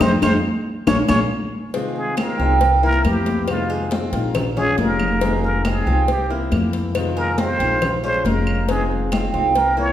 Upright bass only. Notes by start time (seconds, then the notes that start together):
0.00 F2
0.22 F2
0.87 A#1
1.09 A#1
2.39 C2
3.04 F2
4.12 A#1
4.78 F1
5.86 C2
6.52 F2
7.59 A#1
8.25 F1
9.34 C2